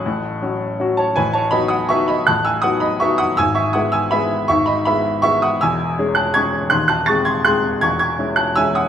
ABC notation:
X:1
M:3/4
L:1/8
Q:1/4=162
K:E
V:1 name="Grand piano"
[af']4 z [ca] | [Bg] [ca] [db] [fd'] [ec'] [db] | [af'] [ge'] [fd'] [db] [ec'] [fd'] | [ge'] [ec'] [fd'] [ge'] [eb]2 |
[ec'] [db] [eb]2 [ec'] [fd'] | [K:C#m] [ge']3 [af'] [c'g']2 | [^bf'] [af'] [c'a'] [bg'] [bf']2 | [c'g'] [c'g']2 [af'] [ge'] [fd'] |]
V:2 name="Grand piano"
[A,,,A,,]2 [F,CF]2 [F,CF]2 | [A,,,A,,]2 [F,B,D]2 [F,B,D]2 | [A,,,A,,]2 [F,B,D]2 [F,B,D]2 | [G,,,G,,]2 [G,B,E]2 [G,B,E]2 |
[G,,,G,,]2 [G,B,E]2 [G,B,E]2 | [K:C#m] [E,,,E,,]2 [G,CG]2 [G,CG]2 | [D,,,D,,]2 [G,^B,G]2 [G,B,G]2 | [E,,,E,,]2 [G,CE]2 [G,CE]2 |]